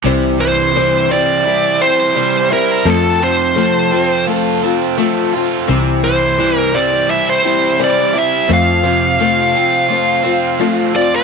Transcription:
0.04 2.83 C2 medium
0.04 0.39 C3 medium
0.04 0.40 E3 medium
0.04 0.40 G3 medium
0.04 0.40 C4 medium
0.04 0.39 E4 medium
0.04 0.38 C5 medium
0.39 0.74 E3 medium
0.39 0.74 G3 soft
0.39 0.75 C4 soft
0.39 0.75 E4 soft
0.39 0.75 C5 medium
0.39 1.13 C5 medium
0.75 1.10 C3 medium
0.75 1.10 E3 medium
0.75 1.10 G3 medium
0.75 1.11 C4 medium
0.75 1.11 E4 medium
0.75 1.09 C5 medium
1.10 1.44 G3 soft
1.10 1.45 C4 soft
1.10 1.46 E4 soft
1.10 1.45 C5 soft
1.10 1.83 D5 loud
1.46 1.81 G3 soft
1.46 1.81 C4 soft
1.46 1.81 E4 medium
1.46 1.79 C5 medium
1.81 2.15 G3 soft
1.81 2.15 C4 soft
1.81 2.15 E4 soft
1.81 2.16 C5 soft
1.81 2.52 C5 medium
2.15 2.51 C3 medium
2.15 2.51 E3 medium
2.15 2.51 G3 medium
2.15 2.51 C4 medium
2.15 2.50 E4 medium
2.15 2.49 C5 medium
2.50 2.85 G3 soft
2.50 2.84 C4 soft
2.50 2.85 E4 soft
2.50 2.88 A#4 medium
2.50 2.86 C5 soft
2.85 5.64 F2 medium
2.85 4.63 F2 medium
2.85 3.21 F3 medium
2.85 3.21 A3 medium
2.85 3.21 C4 medium
2.85 3.21 F4 medium
2.85 3.19 A4 medium
2.90 3.23 A4 medium
3.20 4.98 C3 medium
3.20 3.55 C4 soft
3.20 3.56 F4 soft
3.20 3.55 A4 soft
3.20 4.25 C5 medium
3.55 3.91 F3 medium
3.55 3.92 A3 medium
3.55 3.92 C4 medium
3.55 3.92 F4 medium
3.55 3.90 A4 medium
3.91 4.26 C4 soft
3.91 4.27 F4 soft
3.91 4.27 A4 soft
4.27 4.63 A3 medium
4.27 4.63 C4 soft
4.27 4.63 F4 medium
4.27 4.61 A4 medium
4.63 4.97 C4 soft
4.63 4.98 F4 soft
4.63 4.98 A4 medium
4.98 5.33 F3 medium
4.98 5.33 A3 medium
4.98 5.34 C4 medium
4.98 5.34 F4 medium
4.98 5.33 A4 medium
5.34 5.68 C4 soft
5.34 5.68 F4 soft
5.34 5.69 A4 medium
5.67 8.46 C2 medium
5.67 6.03 C3 medium
5.67 6.03 E3 medium
5.67 6.04 G3 medium
5.67 6.04 C4 loud
5.67 6.03 E4 medium
5.67 6.02 C5 medium
6.03 6.39 E3 medium
6.03 6.37 G3 soft
6.03 6.37 C4 soft
6.03 6.37 E4 soft
6.03 6.38 C5 medium
6.03 6.58 C5 medium
6.37 6.73 C3 medium
6.37 6.74 E3 medium
6.37 6.73 G3 medium
6.37 6.73 C4 medium
6.37 6.72 E4 medium
6.37 6.71 C5 medium
6.58 6.76 A#4 medium
6.72 7.05 G3 soft
6.72 7.07 C4 soft
6.72 7.07 E4 soft
6.72 7.08 C5 soft
6.72 7.10 D5 medium
7.06 7.43 G3 medium
7.06 7.44 C4 medium
7.06 7.44 E4 soft
7.06 7.42 C5 medium
7.06 7.26 E5 medium
7.30 7.77 C5 medium
7.43 7.78 G3 soft
7.43 7.78 C4 soft
7.43 7.78 E4 soft
7.43 7.78 C5 soft
7.78 8.14 C3 medium
7.78 8.14 E3 medium
7.78 8.14 G3 medium
7.78 8.14 C4 medium
7.78 8.13 E4 medium
7.78 8.12 C5 medium
7.84 8.18 D5 medium
8.13 8.48 G3 soft
8.13 8.47 C4 soft
8.13 8.49 E4 soft
8.13 8.49 C5 soft
8.18 8.49 E5 medium
8.48 10.24 F2 medium
8.48 11.24 F2 medium
8.48 8.84 F3 medium
8.48 8.84 A3 medium
8.48 8.84 C4 medium
8.48 8.84 F4 medium
8.48 8.82 C5 medium
8.53 10.93 F5 medium
8.83 10.59 C3 medium
8.83 9.19 C4 soft
8.83 9.20 F4 soft
8.83 9.19 C5 medium
9.20 9.55 F3 medium
9.20 9.55 A3 medium
9.20 9.55 C4 medium
9.20 9.55 F4 medium
9.20 9.53 C5 medium
9.55 9.89 C4 soft
9.55 9.90 F4 medium
9.55 9.90 C5 medium
9.89 10.25 A3 medium
9.89 10.25 C4 medium
9.89 10.24 F4 medium
9.89 10.23 C5 medium
10.24 10.59 C4 soft
10.24 10.59 F4 soft
10.24 10.60 C5 medium
10.59 10.94 F3 medium
10.59 10.95 A3 medium
10.59 10.95 C4 medium
10.59 10.93 F4 medium
10.59 10.92 C5 medium
10.93 11.24 C4 medium
10.93 11.24 F4 medium
10.93 11.24 C5 medium
10.93 11.13 D5 medium
11.16 11.24 C5 medium

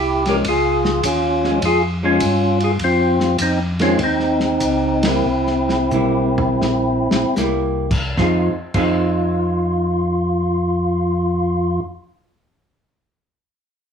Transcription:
0.00 0.43 C2 medium
0.00 0.24 E4 medium
0.00 0.27 G4 medium
0.26 0.43 F3 medium
0.26 0.43 G#3 medium
0.26 0.44 C#4 medium
0.26 0.37 G4 medium
0.26 0.37 A#4 loud
0.26 snare soft
0.26 ride soft
0.45 1.02 C#2 medium
0.45 1.01 F4 medium
0.45 1.07 G#4 medium
0.45 kick soft
0.45 ride medium
0.85 snare medium
1.03 1.60 D#2 medium
1.03 1.59 C#4 medium
1.03 1.59 F4 medium
1.03 kick soft
1.03 hi-hat pedal medium
1.03 ride medium
1.44 1.61 F3 medium
1.44 1.61 G#3 medium
1.44 1.62 C#4 medium
1.44 snare soft
1.62 2.20 F2 medium
1.62 1.83 F4 medium
1.62 1.83 G#4 loud
1.62 kick soft
1.62 ride medium
2.03 2.20 F3 medium
2.03 2.20 G#3 medium
2.03 2.20 C#4 medium
2.03 2.59 C#4 medium
2.03 2.63 F4 loud
2.20 2.78 G2 medium
2.20 kick soft
2.20 hi-hat pedal medium
2.20 ride medium
2.60 2.72 F4 medium
2.60 2.72 G#4 medium
2.60 ride soft
2.79 3.37 F2 medium
2.79 kick soft
2.79 ride medium
2.84 3.37 C4 medium
2.84 3.37 F4 medium
3.20 snare soft
3.38 3.97 F2 medium
3.38 3.60 C4 medium
3.38 3.59 D#4 medium
3.38 kick soft
3.38 hi-hat pedal medium
3.38 ride medium
3.79 3.97 D#3 medium
3.79 3.98 G#3 medium
3.79 3.98 C4 medium
3.79 3.99 C#4 medium
3.79 3.99 F4 medium
3.79 snare medium
3.79 ride soft
3.98 4.59 D#2 medium
3.98 kick soft
3.98 ride medium
4.03 5.02 C4 medium
4.03 5.09 D#4 medium
4.20 snare soft
4.40 snare soft
4.60 5.23 C#2 medium
4.60 kick soft
4.60 hi-hat pedal medium
4.60 ride medium
5.03 5.23 G3 medium
5.03 5.24 A#3 medium
5.03 5.24 E4 medium
5.03 snare medium
5.03 ride medium
5.07 7.35 C4 medium
5.07 7.35 E4 medium
5.25 5.90 C2 medium
5.47 snare soft
5.69 snare soft
5.91 6.60 B1 medium
5.91 7.03 G3 medium
5.91 7.03 A#3 medium
5.91 7.03 E4 medium
5.91 hi-hat pedal medium
5.91 high tom medium
6.38 floor tom medium
6.62 7.09 A#1 medium
6.62 snare medium
7.11 7.25 A#1 soft
7.11 snare medium
7.36 8.16 C2 medium
7.36 7.86 G3 medium
7.36 7.86 A#3 medium
7.36 7.86 E4 medium
7.36 snare medium
7.36 hi-hat pedal medium
7.91 kick medium
7.91 crash medium
8.17 8.49 F2 medium
8.17 8.52 F3 medium
8.17 8.53 C4 medium
8.17 8.53 D#4 medium
8.17 8.50 F4 medium
8.17 8.53 G#4 medium
8.17 kick medium
8.17 snare medium
8.74 11.80 F2 medium
8.74 11.84 F3 medium
8.74 11.85 C4 medium
8.74 11.86 D#4 medium
8.74 11.80 F4 medium
8.74 11.86 G#4 medium
8.74 kick medium
8.74 crash medium

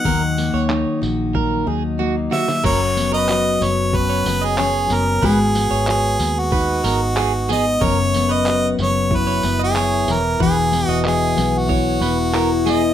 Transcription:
0.00 1.34 F#3 medium
0.00 0.12 B3 medium
0.00 0.69 D#4 medium
0.00 1.01 F#4 medium
0.00 0.67 F#5 loud
0.05 0.50 D#2 medium
0.05 2.64 D#3 medium
0.05 0.21 A#4 medium
0.05 kick loud
0.37 1.98 A#3 medium
0.37 tambourine medium
0.54 0.84 D#2 loud
0.54 0.99 C#5 medium
0.69 1.66 D#4 medium
0.69 clap loud
1.02 1.63 A#1 medium
1.02 2.64 F#4 medium
1.02 tambourine medium
1.35 4.85 F#3 medium
1.35 1.67 A#4 medium
1.35 kick loud
1.67 2.28 D#2 medium
1.67 2.32 D#4 medium
1.67 1.83 G#4 medium
1.99 2.70 A#3 medium
1.99 2.15 F#4 medium
2.31 2.47 F#4 medium
2.31 2.62 E5 loud
2.31 snare medium
2.48 snare medium
2.64 3.57 F#1 loud
2.64 5.23 F#2 medium
2.64 3.29 F#4 medium
2.64 2.79 A#4 medium
2.64 3.10 C#5 loud
2.64 kick loud
2.64 crash loud
2.97 3.60 B3 medium
2.97 tambourine medium
3.12 3.58 B4 medium
3.12 3.65 D#5 loud
3.29 5.23 F#4 medium
3.29 clap loud
3.61 4.22 F#1 loud
3.61 4.26 B3 medium
3.61 3.98 C#5 loud
3.61 tambourine medium
3.93 4.57 C#4 medium
3.93 4.47 B4 loud
3.93 kick loud
4.09 4.25 C#5 medium
4.26 4.87 F#1 loud
4.26 4.90 B3 medium
4.26 tambourine medium
4.42 4.95 G#4 loud
4.42 4.57 D#5 medium
4.58 5.29 C#4 medium
4.58 5.04 C#5 medium
4.58 clap loud
4.90 5.20 F#1 medium
4.90 5.55 B3 medium
4.90 5.27 A#4 loud
4.90 tambourine medium
5.22 5.67 G#1 loud
5.22 7.82 G#3 medium
5.22 5.88 F#4 medium
5.22 5.89 G#4 loud
5.22 5.38 B4 loud
5.22 kick loud
5.55 6.20 B3 medium
5.55 tambourine medium
5.71 6.16 G#1 loud
5.71 6.17 C#5 medium
5.87 7.83 F#4 medium
5.87 6.41 G#4 loud
5.87 clap loud
6.19 6.80 D#2 loud
6.19 6.85 B3 medium
6.19 tambourine medium
6.39 7.51 F#4 loud
6.52 7.16 D#4 medium
6.52 6.83 B4 medium
6.52 kick loud
6.84 7.77 G#1 loud
6.84 7.50 B3 medium
6.84 7.00 A#4 medium
6.84 tambourine medium
7.16 7.88 D#4 medium
7.16 7.32 G#4 medium
7.16 clap loud
7.49 8.15 B3 medium
7.49 7.64 G#4 medium
7.49 7.85 D#5 loud
7.49 tambourine medium
7.81 8.75 F#1 loud
7.81 10.15 F#2 medium
7.81 8.47 F#4 medium
7.81 7.97 A#4 medium
7.81 8.34 C#5 loud
7.81 kick loud
8.14 8.79 B3 medium
8.14 tambourine medium
8.29 8.75 B4 medium
8.29 8.68 D#5 loud
8.46 10.40 F#4 medium
8.46 clap loud
8.78 9.40 F#1 loud
8.78 9.44 B3 medium
8.78 9.18 C#5 loud
8.78 tambourine medium
9.11 9.76 E4 medium
9.11 kick loud
9.16 9.62 B4 loud
9.27 9.42 C#5 medium
9.43 10.04 F#1 loud
9.43 10.71 B3 medium
9.43 tambourine medium
9.59 9.75 D#5 medium
9.64 10.14 G#4 loud
9.76 10.44 E4 medium
9.76 10.21 C#5 medium
9.76 clap loud
10.08 10.38 E1 loud
10.08 10.40 E3 medium
10.08 tambourine medium
10.12 10.42 A#4 medium
10.40 10.85 E1 loud
10.40 12.94 E3 medium
10.40 11.04 F#4 medium
10.40 10.87 G#4 loud
10.40 10.56 B4 medium
10.40 kick loud
10.72 11.36 B3 medium
10.72 tambourine medium
10.87 11.33 E1 loud
10.87 11.02 F#4 loud
10.87 11.34 D#5 medium
11.05 12.94 F#4 medium
11.05 11.60 G#4 loud
11.05 clap loud
11.36 11.98 B1 loud
11.36 12.01 B3 medium
11.36 tambourine medium
11.58 12.73 F#4 loud
11.69 12.33 E4 medium
11.69 12.00 C#5 medium
11.69 kick loud
12.01 12.94 E1 loud
12.01 12.66 B3 medium
12.01 12.17 B4 medium
12.01 tambourine medium
12.34 12.94 E4 medium
12.34 12.49 A#4 medium
12.34 clap loud
12.66 12.94 B3 medium
12.66 12.82 G#4 medium
12.66 tambourine medium
12.71 12.94 D#5 medium

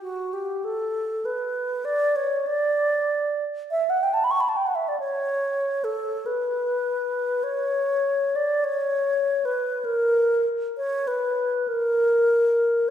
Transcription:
0.01 0.35 F#4 medium
0.33 0.66 G4 medium
0.64 1.27 A4 medium
1.25 1.86 B4 medium
1.85 2.17 D5 medium
2.16 2.48 C#5 medium
2.47 3.44 D5 medium
3.71 3.91 E5 medium
3.90 4.05 F#5 medium
4.03 4.15 G5 medium
4.14 4.25 A5 medium
4.24 4.32 B5 medium
4.31 4.42 C#6 medium
4.41 4.50 B5 medium
4.49 4.58 A5 soft
4.56 4.68 G5 soft
4.67 4.77 F#5 medium
4.75 4.90 E5 medium
4.88 4.99 D5 medium
5.00 5.86 C#5 medium
5.84 6.27 A4 medium
6.26 7.45 B4 medium
7.43 8.37 C#5 medium
8.36 8.66 D5 medium
8.64 9.47 C#5 medium
9.45 9.86 B4 medium
9.85 10.46 A#4 medium
10.77 11.09 C#5 medium
11.07 11.69 B4 medium
11.68 12.90 A#4 medium

